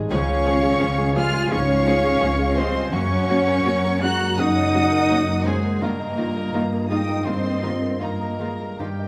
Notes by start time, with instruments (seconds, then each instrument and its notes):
Already playing: harp G#2 D#3 G#3 G#4 D#5 D#6, grand piano D#3 G3 G#3 D#4 G#4 D#5
0.09 double bass section C#2, grand piano C#2, harp C#3, viola section F3 G#3, french horn section C#4, violin section C#4 G#4 C#6, cello section C#4, oboe C#5, flute section F5
0.28 harp G#3, grand piano C#5
0.45 viola section F3 G#3, violin section C#4 G#4, grand piano F4
0.62 grand piano G#4, harp G#4
0.80 double bass section C#2, viola section F3 G#3, violin section C#4 G#4, grand piano C#5, harp F5
0.98 grand piano G#3, harp G#5
1.14 viola section F3 G#3, grand piano G3, violin section C#4 G#4 F6, french horn section F4, cello section F4, harp F5, oboe F5, flute section G#5
1.33 grand piano G#3, harp G#4
1.50 double bass section C#2, grand piano G#2, viola section F3 G#3, french horn section C#4, violin section C#4 G#4 C#6, cello section C#4, oboe C#5, flute section F5
1.69 harp G#3, grand piano C#5
1.86 viola section F3 G#3, violin section C#4 G#4, grand piano F4
2.04 grand piano G#4, harp G#4
2.20 double bass section C#2, viola section F3 G#3, violin section C#4 G#4, grand piano C#5, harp F5
2.39 grand piano G#3
2.55 viola section F3 G#3, grand piano G3, cello section C4, violin section C#4 G#4 C6, french horn section C5, oboe C5, flute section D#5, harp F5
2.75 grand piano G#3, harp G#4
2.91 harp F#2, grand piano F#2, double bass section F#2, viola section F#3 A#3, french horn section C#4, violin section C#4 F#4 C#6, cello section C#4, flute section F#5
2.95 oboe C#5
3.11 harp A#3, grand piano C#5
3.29 viola section F#3 A#3, harp C#4, violin section C#4 F#4, grand piano F#4
3.47 harp A#4, grand piano A#4
3.65 double bass section F#2, viola section F#3 A#3, violin section C#4 F#4, grand piano C#5, harp F#5
3.84 grand piano A#3, harp A#5
4.02 viola section F#3 A#3, grand piano G#3, violin section C#4 F#4 F#6, french horn section F#4, cello section F#4, harp F#5, oboe F#5, flute section A#5
4.20 grand piano A#3, harp A#4
4.38 double bass section F#2, grand piano C#3, harp C#3, viola section F#3 A#3, violin section C#4 F#4 D#6, french horn section D#4, cello section D#4, oboe D#5, flute section F#5
4.56 harp A#3, grand piano C#5
4.74 viola section F#3 A#3, violin section C#4 F#4, grand piano F#4
4.92 grand piano A#4, harp A#4
5.09 double bass section F#2, viola section F#3 A#3, violin section C#4 F#4, grand piano C#5, harp F#5
5.28 grand piano A#3
5.46 viola section F#3 A#3, grand piano G#3, cello section G#3, french horn section G#3, violin section C#4 F#4 G#5, oboe G#4, flute section C5, harp F#5
5.63 grand piano A#3, harp A#4
5.81 double bass section G2, grand piano G2, harp G2, viola section D#3 A#3, french horn section A#3, cello section A#3, violin section D#4 F4 A#5, oboe A#4, flute section D#5
6.00 harp A#3, grand piano D#5
6.17 viola section D#3 A#3, violin section D#4 F4, grand piano F4, harp D#5
6.36 grand piano A#4, harp A#4
6.54 double bass section G2, viola section D#3 A#3, violin section D#4 F4, grand piano D#5, harp F5
6.72 grand piano A#3, harp D#6
6.89 viola section D#3 A#3, grand piano G#3, french horn section D#4, cello section D#4, violin section D#4 F4 D#6, oboe D#5, harp F5, flute section G5
7.08 grand piano A#3, harp A#4
7.25 double bass section G2, grand piano G2, harp G2, viola section D#3 A#3, french horn section C4, cello section C4, violin section D#4 F4 C6, oboe C5, flute section D#5
7.44 harp A#3, grand piano D#5
7.62 viola section D#3 A#3, violin section D#4 F4, grand piano F4, harp D#5
7.82 grand piano A#4, harp A#4
8.00 double bass section G2, viola section D#3 A#3, french horn section A#3, cello section A#3, violin section D#4 F4 A#5, oboe A#4, flute section D#5, grand piano D#5, harp F5
8.21 grand piano A#3, harp D#6
8.40 viola section D#3 A#3, grand piano G#3, violin section D#4 F4, harp F5
8.59 grand piano A#3, harp A#4
8.77 double bass section G2, grand piano G2, harp G2, viola section D#3 A#3, french horn section G3, cello section G3, violin section D#4 F4 G5, oboe G4, flute section A#4
8.99 harp A#3, grand piano D#5